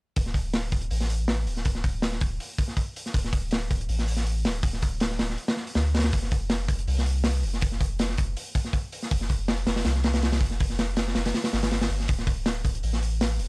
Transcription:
0.16 D1, kick, open hi-hat
0.26 snare
0.34 kick, open hi-hat
0.53 snare, open hi-hat
0.72 D1, kick, open hi-hat
0.81 closed hi-hat
0.90 A1, open hi-hat
1.01 snare
1.10 open hi-hat
1.28 snare, open hi-hat
1.46 D1, open hi-hat
1.57 snare
1.65 kick, open hi-hat
1.75 snare
1.84 kick, open hi-hat
2.02 snare, open hi-hat
2.12 snare
2.21 D1, kick, open hi-hat
2.40 open hi-hat
2.58 kick, open hi-hat
2.68 snare
2.77 kick, open hi-hat
2.96 open hi-hat
3.06 snare
3.14 D1, kick, open hi-hat
3.24 snare
3.33 kick, open hi-hat
3.51 snare, open hi-hat
3.71 D1, kick, open hi-hat
3.81 closed hi-hat
3.89 A1, open hi-hat
3.99 snare
4.08 open hi-hat
4.17 snare
4.26 open hi-hat
4.45 D1, snare, open hi-hat
4.63 kick, open hi-hat
4.73 snare
4.82 kick, open hi-hat
5.00 snare, open hi-hat
5.11 snare
5.19 D1, snare, open hi-hat
5.30 snare
5.38 open hi-hat
5.48 snare, open hi-hat
5.57 snare
5.67 open hi-hat
5.75 D2, snare, open hi-hat
5.95 snare, open hi-hat
5.99 snare, open hi-hat
6.04 snare, open hi-hat
6.13 F1, kick, open hi-hat
6.23 snare
6.31 kick, open hi-hat
6.50 snare, open hi-hat
6.68 F1, kick, open hi-hat
6.79 closed hi-hat
6.87 C2, open hi-hat
6.98 snare
7.06 open hi-hat
7.24 snare, open hi-hat
7.43 F1, open hi-hat
7.54 snare
7.61 kick, open hi-hat
7.72 snare
7.81 kick, open hi-hat
7.99 snare, open hi-hat
8.09 snare
8.17 F1, kick, open hi-hat
8.37 open hi-hat
8.55 kick, open hi-hat
8.65 snare
8.73 kick, open hi-hat
8.92 open hi-hat
9.03 snare
9.11 F1, kick, open hi-hat
9.21 snare
9.29 kick, open hi-hat
9.48 snare, open hi-hat
9.67 F1, snare, open hi-hat
9.76 snare, open hi-hat
9.85 C2, snare, open hi-hat
9.95 snare
10.04 snare, open hi-hat
10.13 snare, open hi-hat
10.22 snare, open hi-hat
10.32 snare, open hi-hat
10.41 F1, kick, open hi-hat
10.51 snare
10.60 kick, open hi-hat
10.70 snare
10.79 snare, open hi-hat
10.97 snare, open hi-hat
11.08 snare
11.15 F1, snare, open hi-hat
11.25 snare, open hi-hat
11.34 snare, open hi-hat
11.44 snare, open hi-hat
11.53 G1, snare, open hi-hat
11.63 snare, open hi-hat
11.71 snare, open hi-hat
11.81 snare, open hi-hat
11.90 G1, open hi-hat
12.00 snare
12.08 D1, kick, open hi-hat
12.19 snare
12.27 kick, open hi-hat
12.46 snare, open hi-hat
12.65 D1, kick, open hi-hat
12.75 closed hi-hat
12.83 A1, open hi-hat
12.93 snare
13.02 open hi-hat
13.21 snare, open hi-hat
13.39 D1, open hi-hat

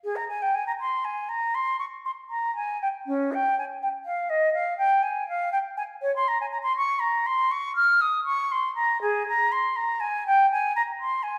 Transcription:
0.04 G#4
0.16 A#5
0.28 G#5
0.42 G5
0.54 G#5
0.66 A#5
0.80 C6
1.04 G#5
1.29 A#5
1.54 C6
1.79 C#6
2.05 C6
2.29 A#5
2.55 G#5
2.82 G5
3.06 C#4
3.32 G5
3.58 G#5
3.82 G5
4.05 F5
4.29 D#5
4.53 F5
4.78 G5
5.02 G#5
5.29 F5
5.52 G5
5.77 G#5
6.01 C#5
6.16 C6
6.28 A#5
6.41 G#5
6.52 A#5
6.63 C6
6.77 C#6
6.99 A#5
7.26 C6
7.51 C#6
7.76 F6
8.01 D#6
8.24 C#6
8.51 C6
8.75 A#5
9.02 G#4
9.28 A#5
9.52 C6
9.76 A#5
10.00 G#5
10.26 G5
10.51 G#5
10.76 A#5
11.00 C6
11.23 G#5

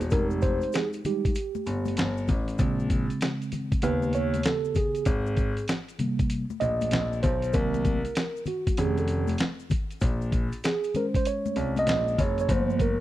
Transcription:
0.01 closed hi-hat, maracas
0.10 F1 G#3 D#4 G4 A#4, kick, closed hi-hat, maracas
0.31 maracas
0.42 C5, kick, closed hi-hat, maracas
0.61 closed hi-hat, maracas
0.73 G#4, snare, closed hi-hat, maracas
0.93 closed hi-hat, maracas
1.05 G3 G#3 D#4 G4, closed hi-hat, low conga, maracas
1.25 kick, closed hi-hat, maracas
1.35 closed hi-hat, maracas
1.55 high conga, maracas
1.66 G1, closed hi-hat, maracas
1.86 closed hi-hat, high conga, maracas
1.97 G1, snare, closed hi-hat, maracas
2.17 maracas
2.28 A1, kick, closed hi-hat, low conga, maracas
2.48 closed hi-hat, maracas
2.58 A#1 C#3 G#3 C4, kick, closed hi-hat, maracas
2.80 maracas
2.90 kick, closed hi-hat, maracas
3.10 closed hi-hat, maracas
3.21 snare, closed hi-hat, maracas
3.42 closed hi-hat, maracas
3.52 closed hi-hat, low conga, maracas
3.72 kick, closed hi-hat, maracas
3.82 D#2 C#3 B3 G4 B4, closed hi-hat, maracas
4.02 high conga, maracas
4.13 C#5, closed hi-hat, maracas
4.34 closed hi-hat, high conga, maracas
4.43 A4, snare, closed hi-hat, maracas
4.64 maracas
4.75 G#4, kick, closed hi-hat, low conga, maracas
4.95 closed hi-hat, maracas
5.05 G#1, kick, closed hi-hat, maracas
5.26 maracas
5.37 kick, closed hi-hat, maracas
5.57 closed hi-hat, maracas
5.68 snare, closed hi-hat, maracas
5.88 closed hi-hat, maracas
5.99 C3 G3 A#3, closed hi-hat, low conga, maracas
6.19 kick, closed hi-hat, maracas
6.30 closed hi-hat, maracas
6.50 high conga, maracas
6.60 A#1 D#5, closed hi-hat, maracas
6.81 closed hi-hat, high conga, maracas
6.91 A#1, snare, closed hi-hat, maracas
7.13 maracas
7.23 B1 C5, kick, closed hi-hat, low conga, maracas
7.42 closed hi-hat, maracas
7.53 C2 D#3 F#3 A#3 A#4, kick, closed hi-hat, maracas
7.74 closed hi-hat, high conga, maracas
7.85 kick, closed hi-hat, high conga, maracas
8.05 closed hi-hat, maracas
8.15 snare, closed hi-hat, maracas
8.36 maracas
8.46 F#4, closed hi-hat, low conga, maracas
8.67 kick, closed hi-hat, high conga, maracas
8.77 F1 D#3 A3 C#4 G#4, closed hi-hat, maracas
8.98 A4, closed hi-hat, high conga, maracas
9.08 closed hi-hat, maracas
9.28 closed hi-hat, high conga, maracas
9.38 snare, closed hi-hat, maracas
9.60 maracas
9.70 kick, closed hi-hat, low conga, maracas
9.90 closed hi-hat, maracas
10.01 A#1, kick, closed hi-hat, maracas
10.21 maracas
10.32 kick, closed hi-hat, maracas
10.52 closed hi-hat, maracas
10.64 G#4, snare, closed hi-hat, maracas
10.84 closed hi-hat, maracas
10.94 G#3 C#4 A#4 C5, closed hi-hat, low conga, maracas
11.14 C5, kick, closed hi-hat, maracas
11.25 C#5, closed hi-hat, maracas
11.46 high conga, maracas
11.56 C2, closed hi-hat, maracas
11.76 D#5, closed hi-hat, high conga, maracas
11.87 A#1, snare, closed hi-hat, maracas
12.08 maracas
12.18 F#1 C#5, kick, closed hi-hat, low conga, maracas
12.38 C#5, closed hi-hat, maracas
12.49 G1 F3 A3 A#3 C5, kick, closed hi-hat, maracas
12.70 maracas
12.79 A#4, kick, closed hi-hat, maracas

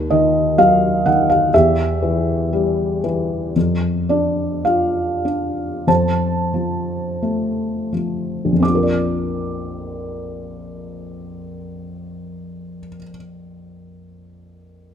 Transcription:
Already playing: D#2
0.10 D#3 D#5
0.58 F#3 F5
1.06 D#3 F#5
1.30 F5
1.54 E2 G4 E5
2.02 E3
2.53 G3
3.04 E3
3.56 F2
4.09 D4 D5
4.65 F4 F5
5.25 D4
5.87 F2 C5 A5
6.54 F3
7.22 A3
7.93 F3
8.45 A#1
8.53 F2
8.60 C4 D6
8.67 F4
8.75 A#4
8.83 D5

